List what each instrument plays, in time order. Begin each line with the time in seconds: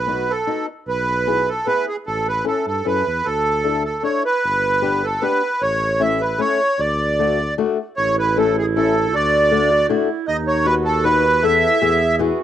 Already playing: tuba B1, accordion B4
0.07 steel-string acoustic guitar B3 D#4 F#4
0.30 accordion A4
0.47 steel-string acoustic guitar B3 D#4 F#4
0.87 tuba B1, accordion B4
1.27 steel-string acoustic guitar B3 E4 G#4
1.48 accordion A4
1.67 steel-string acoustic guitar B3 E4 G#4, accordion B4
1.88 accordion G#4
2.06 tuba A1, accordion A4
2.28 accordion B4
2.44 steel-string acoustic guitar C#4 E4 A4, accordion A4
2.66 tuba G2, accordion A4
2.85 tuba F#2, steel-string acoustic guitar C#4 E4 A4, accordion B4
3.07 tuba E2
3.25 tuba D2, accordion A4
3.64 steel-string acoustic guitar D4 E4 A4
3.85 accordion A4
4.03 steel-string acoustic guitar D4 E4 A4, accordion C#5
4.25 accordion B4
4.44 tuba G1
4.82 steel-string acoustic guitar B3 D4 G4
5.04 accordion A4
5.22 steel-string acoustic guitar B3 D4 G4, accordion B4
5.61 tuba A1, accordion C#5
6.00 steel-string acoustic guitar A3 C#4 E4, accordion E5
6.21 accordion B4
6.38 steel-string acoustic guitar A3 C#4 E4, accordion C#5
6.79 tuba D2, accordion D5
7.19 steel-string acoustic guitar A3 D4 F#4
7.58 steel-string acoustic guitar A3 D4 F#4
7.97 tuba A1, clarinet E4, accordion C#5
8.19 accordion B4
8.37 steel-string acoustic guitar A3 C#4 E4, accordion A4
8.58 accordion G#4
8.76 steel-string acoustic guitar A3 C#4 E4, accordion A4
9.13 tuba D2, clarinet F#4, accordion D5
9.51 steel-string acoustic guitar A3 D4 F#4, clarinet D4
9.71 clarinet F#4
9.89 steel-string acoustic guitar A3 D4 F#4, clarinet E4
10.27 tuba D#2, clarinet D#4, accordion D#5
10.47 accordion C#5
10.65 steel-string acoustic guitar B3 D#4 F#4, clarinet F#4, accordion B4
10.85 accordion A4
11.04 steel-string acoustic guitar B3 D#4 F#4, accordion B4
11.42 tuba E2, steel-string acoustic guitar B3 E4 A4, clarinet E4, accordion E5
11.81 tuba E2, steel-string acoustic guitar B3 E4 G#4, clarinet G#4
12.19 steel-string acoustic guitar B3 E4 G#4, clarinet F#4